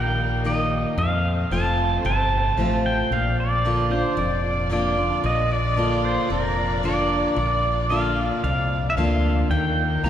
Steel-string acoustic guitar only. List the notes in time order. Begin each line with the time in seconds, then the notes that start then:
Already playing: A#2
0.44 D#3 A#3 D#4 G4
0.98 F2
1.51 F3 A3 C4 F4
2.05 C3
2.57 F3 A3 C4 F4
3.12 A#2
3.65 D3 A#3 D4 F4
3.90 D4 F4
4.17 F2
4.70 D3 A#3 D4 F4
4.97 D4 F4
5.24 A#2
5.76 D3 A#3 D4 F4
6.30 F2
6.83 D3 A#3 D4 F4
7.36 A#2
7.89 D3 A#3 D4 F4
8.44 F2
8.97 D3 A#3 D4 F4
9.51 D#3
10.04 D#3 A#3 D#4 G4